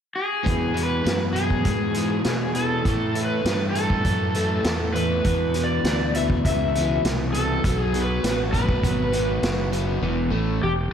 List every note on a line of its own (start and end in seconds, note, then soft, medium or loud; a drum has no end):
0.16 0.82 G#4 medium
0.44 0.73 E2 medium
0.44 1.04 E2 medium
0.44 0.74 B2 medium
0.44 0.74 E3 medium
0.44 kick medium
0.44 closed hi-hat medium
0.74 1.03 E2 medium
0.74 1.03 B2 medium
0.74 1.04 E3 medium
0.74 closed hi-hat soft
0.83 1.22 B4 medium
1.04 1.32 E2 medium
1.04 1.64 F#2 medium
1.04 1.33 B2 medium
1.04 1.35 E3 medium
1.04 snare medium
1.04 closed hi-hat medium
1.33 1.64 E2 medium
1.33 1.64 B2 medium
1.33 1.65 E3 medium
1.33 2.54 G#4 medium
1.33 closed hi-hat medium
1.50 kick medium
1.65 1.94 E2 medium
1.65 2.24 G#2 medium
1.65 1.95 B2 medium
1.65 1.97 E3 medium
1.65 kick medium
1.65 closed hi-hat medium
1.94 2.24 E2 medium
1.94 2.24 B2 medium
1.94 2.25 E3 loud
1.94 closed hi-hat medium
2.24 2.54 E2 medium
2.24 2.55 B2 medium
2.24 2.84 B2 medium
2.24 2.56 E3 medium
2.24 snare medium
2.24 closed hi-hat medium
2.55 2.83 E2 medium
2.55 2.84 B2 medium
2.55 2.87 E3 medium
2.55 3.24 A4 medium
2.55 closed hi-hat medium
2.85 3.44 A2 medium
2.85 3.14 A2 medium
2.85 3.15 E3 medium
2.85 3.15 A3 medium
2.85 kick medium
2.85 closed hi-hat medium
3.15 3.45 A2 medium
3.15 3.46 E3 medium
3.15 3.46 A3 medium
3.15 closed hi-hat medium
3.24 3.62 B4 medium
3.45 4.03 G2 medium
3.45 3.74 A2 medium
3.45 3.75 E3 medium
3.45 3.75 A3 medium
3.45 snare medium
3.45 closed hi-hat medium
3.71 4.04 A2 medium
3.71 4.93 A4 medium
3.75 4.04 E3 medium
3.75 4.05 A3 medium
3.75 closed hi-hat soft
3.90 kick medium
4.05 4.63 F#2 medium
4.05 4.35 A2 medium
4.05 4.34 E3 medium
4.05 4.36 A3 medium
4.05 kick medium
4.05 closed hi-hat medium
4.34 4.63 A2 medium
4.34 4.64 E3 medium
4.34 4.65 A3 medium
4.34 closed hi-hat soft
4.64 5.23 E2 medium
4.64 4.93 A2 medium
4.64 4.94 E3 medium
4.64 4.95 A3 medium
4.64 snare loud
4.64 closed hi-hat medium
4.93 5.23 A2 medium
4.93 5.23 E3 medium
4.93 5.23 A3 medium
4.93 5.66 B4 medium
4.93 closed hi-hat medium
5.24 5.53 E2 medium
5.24 5.83 E2 medium
5.24 5.54 B2 medium
5.24 5.54 E3 medium
5.24 kick medium
5.24 closed hi-hat medium
5.54 5.85 E2 medium
5.54 5.86 B2 medium
5.54 5.86 E3 medium
5.54 closed hi-hat medium
5.64 6.11 D5 medium
5.84 6.42 D2 medium
5.84 6.14 E2 medium
5.84 6.15 B2 medium
5.84 6.15 E3 medium
5.84 snare medium
5.84 closed hi-hat medium
6.14 6.45 E2 medium
6.14 6.46 B2 medium
6.14 6.46 E3 medium
6.14 6.24 E5 medium
6.14 closed hi-hat medium
6.30 kick medium
6.45 7.03 C#2 medium
6.45 6.76 E2 medium
6.45 6.76 B2 medium
6.45 6.77 E3 medium
6.45 7.01 E5 medium
6.45 kick medium
6.45 closed hi-hat medium
6.75 7.04 E2 medium
6.75 7.04 B2 medium
6.75 7.05 E3 loud
6.75 closed hi-hat medium
7.05 7.62 C2 medium
7.05 7.33 E2 medium
7.05 7.34 B2 medium
7.05 7.35 E3 medium
7.05 snare medium
7.05 closed hi-hat medium
7.33 7.62 E2 medium
7.33 7.63 B2 medium
7.33 7.63 E3 medium
7.33 7.79 A4 medium
7.33 closed hi-hat medium
7.64 8.22 B1 medium
7.64 7.93 B2 medium
7.64 7.94 F#3 medium
7.64 7.94 B3 medium
7.64 kick medium
7.64 closed hi-hat medium
7.79 7.99 G#4 medium
7.94 8.22 B2 medium
7.94 8.23 F#3 medium
7.94 8.23 B3 medium
7.94 closed hi-hat medium
8.02 8.40 B4 medium
8.24 8.81 A1 medium
8.24 8.52 B2 medium
8.24 8.52 F#3 medium
8.24 8.53 B3 medium
8.24 snare medium
8.24 closed hi-hat medium
8.53 8.83 B2 medium
8.53 8.82 F#3 medium
8.53 8.84 B3 medium
8.53 9.68 B4 medium
8.53 kick medium
8.53 closed hi-hat medium
8.69 kick medium
8.83 9.41 G#1 medium
8.83 9.11 B2 medium
8.83 9.12 F#3 medium
8.83 9.12 B3 medium
8.83 kick medium
8.83 closed hi-hat medium
9.12 9.41 B2 medium
9.12 9.42 F#3 loud
9.12 9.42 B3 loud
9.12 closed hi-hat medium
9.43 10.00 F#1 medium
9.43 9.71 B2 medium
9.43 9.71 F#3 medium
9.43 9.73 B3 medium
9.43 snare loud
9.43 closed hi-hat medium
9.72 10.00 B2 medium
9.72 10.00 F#3 medium
9.72 10.01 B3 medium
9.72 closed hi-hat medium
10.02 10.30 E1 medium
10.02 10.31 E2 medium
10.02 10.31 E3 medium
10.31 10.59 A1 medium
10.31 10.60 A2 medium
10.31 10.60 A3 medium
10.62 10.89 E1 medium
10.62 10.86 E2 medium
10.62 10.71 G4 medium